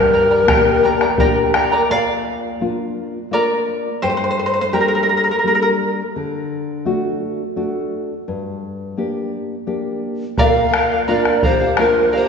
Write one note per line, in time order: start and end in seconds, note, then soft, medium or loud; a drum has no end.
0.00 0.45 G2 medium
0.00 0.12 G4 medium
0.00 1.54 G4 medium
0.00 0.12 A#4 medium
0.00 1.53 A#4 medium
0.00 0.13 D5 medium
0.00 0.12 G5 medium
0.00 0.13 A#5 medium
0.13 0.31 A#4 medium
0.13 0.30 D5 medium
0.13 0.30 G5 medium
0.13 0.29 A#5 medium
0.31 0.48 A#4 soft
0.31 0.48 D5 medium
0.31 0.48 A#5 medium
0.47 1.04 A#3 soft
0.47 1.04 D4 soft
0.47 1.04 G4 soft
0.47 0.83 G4 medium
0.47 0.83 A#4 medium
0.47 0.83 D5 medium
0.47 0.82 G5 medium
0.47 0.84 A#5 medium
0.47 bombo rim medium
0.47 bombo low medium
0.84 1.01 A#4 medium
0.84 1.01 D5 medium
0.84 1.01 G5 medium
0.84 1.00 A#5 medium
1.01 1.19 A#4 soft
1.01 1.19 D5 medium
1.01 1.19 A#5 medium
1.01 bombo rim medium
1.18 1.75 A#3 soft
1.18 1.76 D4 soft
1.18 1.76 G4 soft
1.18 1.55 G4 medium
1.18 1.53 A#4 medium
1.18 1.54 D5 medium
1.18 1.53 G5 medium
1.18 1.54 A#5 medium
1.18 bombo rim soft
1.18 bombo low medium
1.54 1.72 A#4 medium
1.54 1.72 D5 medium
1.54 1.72 G5 medium
1.54 1.71 A#5 medium
1.54 bombo rim medium
1.72 1.90 A#4 soft
1.72 1.90 D5 soft
1.72 1.89 A#5 medium
1.72 bombo rim soft
1.90 2.59 A#2 medium
1.90 3.28 D5 medium
1.90 3.36 F5 medium
2.61 3.17 A#3 soft
2.61 3.18 D4 soft
2.61 3.18 F4 soft
3.31 3.88 A#3 soft
3.31 3.88 D4 soft
3.31 3.88 F4 soft
3.31 3.99 A#4 medium
3.31 4.05 D5 medium
4.02 4.71 G2 medium
4.02 4.09 G4 medium
4.02 4.08 C5 medium
4.10 4.16 C5 soft
4.17 4.23 C5 soft
4.24 4.29 C5 soft
4.31 4.38 C5 soft
4.39 4.45 C5 soft
4.46 4.52 C5 medium
4.54 4.60 C5 soft
4.61 4.68 C5 medium
4.73 5.30 G3 soft
4.73 5.30 A#3 soft
4.73 5.30 D4 soft
4.73 4.80 G4 soft
4.73 4.79 A#4 medium
4.81 4.87 A#4 soft
4.88 4.94 A#4 soft
4.95 5.02 A#4 soft
5.03 5.08 A#4 soft
5.09 5.16 A#4 soft
5.17 5.23 A#4 soft
5.24 5.30 A#4 soft
5.31 5.38 A#4 soft
5.39 5.46 A#4 soft
5.44 6.01 G3 soft
5.44 6.01 A#3 soft
5.44 6.01 D4 soft
5.44 5.54 A#4 soft
5.55 5.61 A#4 soft
5.62 5.69 A#4 soft
6.16 6.84 D3 medium
6.85 7.42 A3 soft
6.85 7.42 D4 soft
6.85 7.42 F#4 soft
7.56 8.13 A3 soft
7.56 8.13 D4 soft
7.56 8.13 F#4 soft
8.28 8.96 G2 medium
8.97 9.54 A#3 soft
8.97 9.54 D4 soft
8.97 9.54 G4 soft
9.67 10.23 A#3 soft
9.67 10.24 D4 soft
9.67 10.24 G4 soft
10.38 11.06 A#2 medium
10.38 10.73 A#4 medium
10.38 11.05 A#4 medium
10.38 10.73 D5 medium
10.38 11.05 F5 medium
10.38 10.74 F5 medium
10.38 bombo rim soft
10.38 bombo low medium
10.74 10.91 A#4 medium
10.74 10.91 D5 medium
10.74 10.90 F5 medium
10.74 bombo rim medium
10.90 11.07 D5 soft
10.90 11.08 F5 medium
10.90 bombo rim soft
11.08 11.64 A#3 soft
11.08 11.64 D4 soft
11.08 11.65 F4 medium
11.08 11.45 A#4 medium
11.08 11.42 A#4 medium
11.08 11.43 D5 medium
11.08 11.46 D5 medium
11.08 11.43 F5 medium
11.08 bombo rim soft
11.25 bombo rim medium
11.42 11.48 A4 medium
11.42 11.61 A#4 medium
11.42 11.81 C5 medium
11.42 11.60 D5 medium
11.42 11.58 F5 medium
11.42 bombo low medium
11.47 11.80 G4 medium
11.60 11.76 D5 soft
11.60 11.77 F5 soft
11.60 bombo rim soft
11.77 12.29 A#3 soft
11.77 12.29 D4 soft
11.77 12.29 F4 soft
11.77 11.84 F#4 medium
11.77 12.11 A#4 medium
11.77 12.14 A#4 medium
11.77 12.12 D5 medium
11.77 12.12 F5 medium
11.77 bombo rim medium
11.83 12.12 F4 medium
11.94 bombo rim soft
12.12 12.29 G4 medium
12.12 12.29 A#4 medium
12.12 12.29 C5 medium
12.12 12.29 D5 medium
12.12 12.28 F5 medium
12.12 bombo rim soft